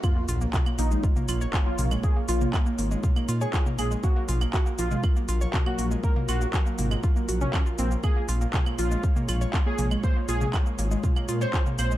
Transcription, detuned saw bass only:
X:1
M:4/4
L:1/8
Q:1/4=120
K:Bbm
V:1 name="Detuned saw bass" clef=bass
z B,,, z B,,, z B,,, z B,,, | z B,,, z A,,, z B,, z B,,, | z B,,, z B,,, z B,,, z B,,, | z B,,, z A,,, z B,,, z B,,, |
z B,,, z B,,, z B,,, z B,,, | z B,,, z A,,, z B,, z B,,, |]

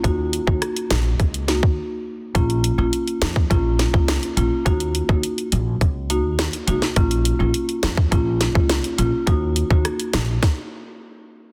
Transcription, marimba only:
X:1
M:4/4
L:1/16
Q:1/4=104
K:Ebdor
V:1 name="Marimba"
[B,EG]3 [B,EG] z6 [B,EG] z4 z | [B,DF]3 [B,DF] z4 [B,DF]3 [B,DF]3 [B,DF]2 | [B,EG]3 [B,EG] z6 [B,EG] z3 [B,EG] z | [B,DF]3 [B,DF] z4 [B,DF]3 [B,DF]3 [B,DF]2 |
[B,EG]3 [B,EG] z12 |]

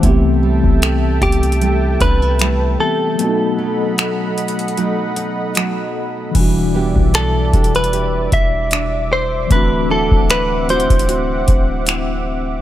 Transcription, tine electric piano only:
X:1
M:4/4
L:1/8
Q:"Swing 16ths" 1/4=76
K:Em
V:1 name="Tine electric piano"
[E,A,B,CG]6- [E,A,B,CG] [E,A,B,CG] | [F,A,B,C^DF]8 | [B,,E,G,DF]8 | [E,A,CDF]8 |]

